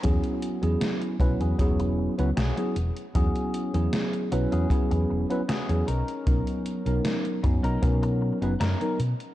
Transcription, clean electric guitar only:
X:1
M:4/4
L:1/16
Q:1/4=77
K:Elyd
V:1 name="Clean electric guitar"
[CFG]3 z4 [CFG] z4 [CFG]2 z2 | [CFG]3 z4 [CFG] z4 [CFG]2 [CDA]2- | [CDA]4 z3 [CDA] z4 [CDA]2 z2 |]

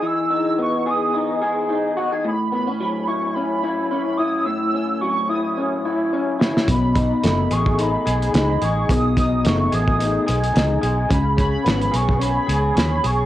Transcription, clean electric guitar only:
X:1
M:4/4
L:1/16
Q:"Swing 16ths" 1/4=108
K:Alyd
V:1 name="Clean electric guitar"
[E,B,DG]2 D2 B,2 G2 D2 G2 D2 F G | A,,2 B, C F,2 E2 C2 E2 C2 E2 | A,,2 C2 F,2 E2 C2 E2 C2 E2 | B,,2 D2 A,2 G2 D2 G2 D2 G2 |
B,,2 D2 A,2 G2 D2 G2 D2 G2 | C,2 C2 B,2 G2 C2 G2 C2 G2 |]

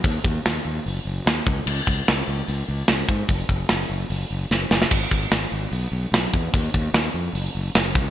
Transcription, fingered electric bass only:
X:1
M:4/4
L:1/8
Q:1/4=148
K:D#phr
V:1 name="Fingered electric bass" clef=bass
D,, D,, D,, D,, F,,, F,,, D,, C,, | C,, C,, C,, C,, C,, C,, C,, G,, | F,,, F,,, F,,, F,,, F,,, F,,, F,,, F,,, | G,,, G,,, G,,, G,,, B,,, B,,, B,,, E,, |
D,, D,, D,, ^E,, F,,, F,,, F,,, C,, |]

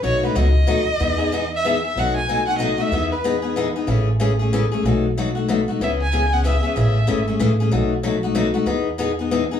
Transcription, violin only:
X:1
M:3/4
L:1/8
Q:"Swing" 1/4=188
K:Bmix
V:1 name="Violin"
c B d4- | d3 e2 e | f g2 f d e- | e B4 z |
z6 | z6 | e g2 f e2 | e3 z3 |
z6 | z6 |]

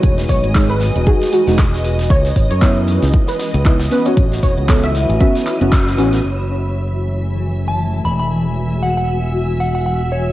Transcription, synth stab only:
X:1
M:4/4
L:1/16
Q:"Swing 16ths" 1/4=116
K:F#dor
V:1 name="Synth stab"
[G,DF]4 [G,DG] z3 [G,DF]2 [G,DF] [G,DF] z4 | z4 [B,DE]8 [B,DE] z [B,CB] [B,CF]- | [B,CF]4 [B,CA] z3 [B,CF]2 z [B,CF]3 [B,CF] z | z16 |
z16 |]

